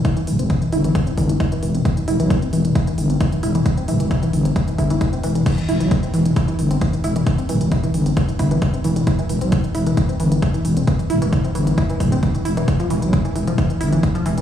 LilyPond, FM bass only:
\new Staff \with { instrumentName = "FM bass" } { \clef bass \time 4/4 \key e \phrygian \tempo 4 = 133 r8 d,,16 e,,8 r16 g,,8 r8 g,,8 r8 e,,8 | r8 e,,16 b,,8 r16 e,,8 r8 g,,8 r8 e,,8 | r8 d,,16 e,,8 r16 g,,8 r8 g,,8 r8 e,,8 | r8 e,,16 b,,8 r16 e,,8 r8 g,,8 r8 e,,8 |
r8 d,,16 e,,8 r16 g,,8 r8 g,,8 r8 e,,8 | r8 e,,16 b,,8 r16 e,,8 r8 g,,8 r8 e,,8 | r8 d,,16 e,,8 r16 g,,8 r8 d,,8 r8 e,,8 | r8 e,,16 b,,8 r16 e,,8 r8 g,,8 r8 e,,8 | }